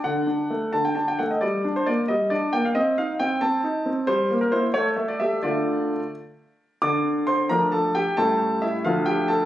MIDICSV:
0, 0, Header, 1, 2, 480
1, 0, Start_track
1, 0, Tempo, 455581
1, 41, Time_signature, 6, 3, 24, 8
1, 1960, Tempo, 445104
1, 5320, Tempo, 462606
1, 7240, Tempo, 448096
1, 10054, End_track
2, 0, Start_track
2, 0, Title_t, "Grand piano"
2, 0, Program_c, 0, 0
2, 42, Note_on_c, 0, 78, 69
2, 48, Note_on_c, 0, 50, 52
2, 279, Note_off_c, 0, 50, 0
2, 284, Note_on_c, 0, 62, 42
2, 531, Note_on_c, 0, 57, 41
2, 537, Note_off_c, 0, 62, 0
2, 764, Note_on_c, 0, 81, 66
2, 766, Note_off_c, 0, 78, 0
2, 776, Note_on_c, 0, 50, 43
2, 781, Note_off_c, 0, 57, 0
2, 886, Note_off_c, 0, 81, 0
2, 893, Note_on_c, 0, 79, 58
2, 1001, Note_on_c, 0, 81, 59
2, 1005, Note_off_c, 0, 50, 0
2, 1011, Note_off_c, 0, 79, 0
2, 1011, Note_on_c, 0, 62, 36
2, 1125, Note_off_c, 0, 81, 0
2, 1137, Note_on_c, 0, 79, 61
2, 1250, Note_on_c, 0, 78, 60
2, 1253, Note_off_c, 0, 79, 0
2, 1260, Note_on_c, 0, 57, 40
2, 1262, Note_off_c, 0, 62, 0
2, 1369, Note_off_c, 0, 78, 0
2, 1377, Note_on_c, 0, 75, 51
2, 1485, Note_on_c, 0, 74, 67
2, 1492, Note_off_c, 0, 75, 0
2, 1493, Note_off_c, 0, 57, 0
2, 1495, Note_on_c, 0, 55, 51
2, 1721, Note_off_c, 0, 55, 0
2, 1734, Note_on_c, 0, 62, 41
2, 1806, Note_off_c, 0, 74, 0
2, 1856, Note_on_c, 0, 72, 64
2, 1964, Note_on_c, 0, 74, 69
2, 1968, Note_off_c, 0, 72, 0
2, 1971, Note_on_c, 0, 58, 46
2, 1978, Note_off_c, 0, 62, 0
2, 2108, Note_off_c, 0, 74, 0
2, 2200, Note_on_c, 0, 75, 71
2, 2208, Note_on_c, 0, 55, 45
2, 2219, Note_off_c, 0, 58, 0
2, 2436, Note_on_c, 0, 74, 69
2, 2438, Note_off_c, 0, 55, 0
2, 2441, Note_off_c, 0, 75, 0
2, 2446, Note_on_c, 0, 62, 42
2, 2679, Note_on_c, 0, 79, 75
2, 2680, Note_off_c, 0, 74, 0
2, 2689, Note_on_c, 0, 58, 43
2, 2697, Note_off_c, 0, 62, 0
2, 2802, Note_off_c, 0, 79, 0
2, 2813, Note_on_c, 0, 77, 63
2, 2918, Note_on_c, 0, 75, 81
2, 2926, Note_on_c, 0, 60, 54
2, 2928, Note_off_c, 0, 58, 0
2, 2929, Note_off_c, 0, 77, 0
2, 3137, Note_off_c, 0, 75, 0
2, 3159, Note_off_c, 0, 60, 0
2, 3166, Note_on_c, 0, 77, 76
2, 3176, Note_on_c, 0, 63, 44
2, 3310, Note_off_c, 0, 77, 0
2, 3399, Note_on_c, 0, 79, 80
2, 3407, Note_on_c, 0, 60, 50
2, 3422, Note_off_c, 0, 63, 0
2, 3623, Note_off_c, 0, 60, 0
2, 3631, Note_on_c, 0, 81, 77
2, 3639, Note_on_c, 0, 60, 53
2, 3640, Note_off_c, 0, 79, 0
2, 3871, Note_off_c, 0, 60, 0
2, 3875, Note_on_c, 0, 63, 46
2, 4114, Note_on_c, 0, 60, 46
2, 4127, Note_off_c, 0, 63, 0
2, 4307, Note_off_c, 0, 81, 0
2, 4345, Note_on_c, 0, 72, 85
2, 4353, Note_on_c, 0, 55, 63
2, 4354, Note_off_c, 0, 60, 0
2, 4585, Note_off_c, 0, 55, 0
2, 4596, Note_on_c, 0, 58, 52
2, 4672, Note_off_c, 0, 72, 0
2, 4710, Note_on_c, 0, 70, 67
2, 4815, Note_off_c, 0, 58, 0
2, 4826, Note_on_c, 0, 72, 79
2, 4831, Note_on_c, 0, 58, 52
2, 4832, Note_off_c, 0, 70, 0
2, 4836, Note_on_c, 0, 64, 50
2, 4974, Note_off_c, 0, 72, 0
2, 5007, Note_off_c, 0, 58, 0
2, 5010, Note_off_c, 0, 64, 0
2, 5064, Note_on_c, 0, 73, 81
2, 5071, Note_on_c, 0, 57, 62
2, 5214, Note_off_c, 0, 73, 0
2, 5301, Note_off_c, 0, 57, 0
2, 5307, Note_on_c, 0, 76, 56
2, 5317, Note_on_c, 0, 57, 47
2, 5430, Note_on_c, 0, 74, 69
2, 5432, Note_off_c, 0, 76, 0
2, 5544, Note_off_c, 0, 57, 0
2, 5550, Note_on_c, 0, 76, 71
2, 5554, Note_off_c, 0, 74, 0
2, 5559, Note_on_c, 0, 57, 44
2, 5564, Note_on_c, 0, 67, 50
2, 5731, Note_off_c, 0, 57, 0
2, 5734, Note_off_c, 0, 67, 0
2, 5787, Note_on_c, 0, 74, 68
2, 5793, Note_off_c, 0, 76, 0
2, 5793, Note_on_c, 0, 50, 49
2, 5793, Note_on_c, 0, 57, 45
2, 5793, Note_on_c, 0, 65, 44
2, 6300, Note_off_c, 0, 50, 0
2, 6373, Note_off_c, 0, 57, 0
2, 6373, Note_off_c, 0, 65, 0
2, 6473, Note_off_c, 0, 74, 0
2, 7231, Note_on_c, 0, 86, 84
2, 7240, Note_on_c, 0, 50, 65
2, 7246, Note_on_c, 0, 74, 61
2, 7694, Note_off_c, 0, 74, 0
2, 7712, Note_on_c, 0, 84, 82
2, 7720, Note_off_c, 0, 86, 0
2, 7723, Note_on_c, 0, 72, 64
2, 7936, Note_off_c, 0, 84, 0
2, 7945, Note_off_c, 0, 50, 0
2, 7950, Note_off_c, 0, 72, 0
2, 7956, Note_on_c, 0, 82, 82
2, 7964, Note_on_c, 0, 53, 45
2, 7969, Note_on_c, 0, 57, 43
2, 7970, Note_on_c, 0, 70, 61
2, 7971, Note_on_c, 0, 62, 51
2, 8105, Note_off_c, 0, 82, 0
2, 8194, Note_off_c, 0, 70, 0
2, 8196, Note_on_c, 0, 81, 75
2, 8209, Note_on_c, 0, 69, 56
2, 8433, Note_off_c, 0, 69, 0
2, 8441, Note_on_c, 0, 79, 78
2, 8443, Note_off_c, 0, 81, 0
2, 8452, Note_on_c, 0, 67, 59
2, 8485, Note_off_c, 0, 53, 0
2, 8488, Note_off_c, 0, 57, 0
2, 8489, Note_off_c, 0, 62, 0
2, 8674, Note_off_c, 0, 67, 0
2, 8679, Note_on_c, 0, 81, 85
2, 8685, Note_off_c, 0, 79, 0
2, 8687, Note_on_c, 0, 55, 45
2, 8688, Note_on_c, 0, 45, 61
2, 8693, Note_on_c, 0, 69, 62
2, 8694, Note_on_c, 0, 57, 46
2, 8700, Note_on_c, 0, 61, 46
2, 9137, Note_off_c, 0, 69, 0
2, 9159, Note_on_c, 0, 76, 75
2, 9163, Note_off_c, 0, 81, 0
2, 9173, Note_on_c, 0, 64, 63
2, 9305, Note_off_c, 0, 76, 0
2, 9363, Note_off_c, 0, 55, 0
2, 9367, Note_off_c, 0, 57, 0
2, 9370, Note_off_c, 0, 61, 0
2, 9385, Note_off_c, 0, 45, 0
2, 9393, Note_off_c, 0, 64, 0
2, 9403, Note_on_c, 0, 77, 77
2, 9411, Note_on_c, 0, 38, 63
2, 9411, Note_on_c, 0, 53, 44
2, 9412, Note_on_c, 0, 65, 61
2, 9418, Note_on_c, 0, 57, 45
2, 9424, Note_on_c, 0, 62, 44
2, 9629, Note_on_c, 0, 79, 75
2, 9632, Note_off_c, 0, 65, 0
2, 9643, Note_off_c, 0, 77, 0
2, 9643, Note_on_c, 0, 67, 52
2, 9864, Note_off_c, 0, 67, 0
2, 9869, Note_on_c, 0, 81, 80
2, 9874, Note_off_c, 0, 79, 0
2, 9885, Note_on_c, 0, 69, 60
2, 10054, Note_off_c, 0, 38, 0
2, 10054, Note_off_c, 0, 53, 0
2, 10054, Note_off_c, 0, 57, 0
2, 10054, Note_off_c, 0, 62, 0
2, 10054, Note_off_c, 0, 69, 0
2, 10054, Note_off_c, 0, 81, 0
2, 10054, End_track
0, 0, End_of_file